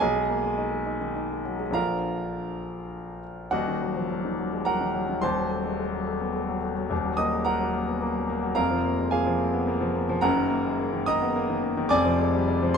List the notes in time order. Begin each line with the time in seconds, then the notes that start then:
0.00 B1 G#4 D#5 G#5
0.16 G#3
0.30 A#3
0.44 G#3
0.58 D#4
0.72 G#3
0.86 D#4
1.01 D#3
1.16 D#4
1.30 G#3
1.45 F#3
1.60 G#3
1.70 A#1 D3 F3 F4 A#5
1.75 A#4 F5
3.51 D#1 D#2 F#4 D#5 F#5
3.68 D#3
3.81 F#3
3.96 F3
4.10 F#3
4.25 D#3
4.39 F#3
4.53 G#3
4.65 F#3 A#4 F#5 A#5
4.81 D#3
4.95 F#3
5.09 D#3
5.22 D#1 D#2 C5 A5 C6
5.37 F#3
5.51 A3
5.65 G#3
5.79 A3
5.93 F#3
6.07 A3
6.21 B3
6.35 A3
6.49 F#3
6.62 A3
6.77 F#3
6.90 D#1 D#2
7.05 F#3
7.17 A#3 D#5 D#6
7.33 G#3
7.45 A#3 A#4 F#5 A#5
7.60 F#3
7.74 A#3
7.88 B3
8.02 A#3
8.16 F#3
8.29 A#3
8.43 F#3
8.55 F1 F2 A#4 F5 A#5
8.71 F3
8.85 A#3
8.99 G#3
9.11 A#3 G#4 F5 G#5
9.27 F3
9.40 A#3
9.53 B3
9.67 A#3
9.81 F3
9.95 A#3
10.09 F3
10.21 F#1 F#2 A#4 F#5 A#5
10.36 D#3
10.50 A#3
10.65 G#3
10.79 A#3
10.93 D#3
11.06 A#3 D#5 A#5 D#6
11.22 B3
11.36 A#3
11.50 D#3
11.63 A#3
11.77 D#3
11.89 F1 F2 D5 G#5 D6
12.05 F3
12.19 G#3
12.34 G3
12.48 G#3
12.62 F3